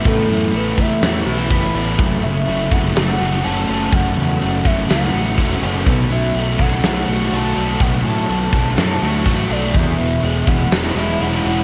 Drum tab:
HH |o---o---o---o---|o---o---o---o---|o---o---o---o---|o---o---o---o---|
SD |--------o--o----|--------o--o----|--------o-------|--------o--o----|
BD |o-----o-----o---|o-----o---------|o-----o-----o---|o-----o---------|

HH |o---o---o---o---|o---o---o---o---|
SD |--------o-------|--------o--o----|
BD |o-----o-----o---|o-----o---------|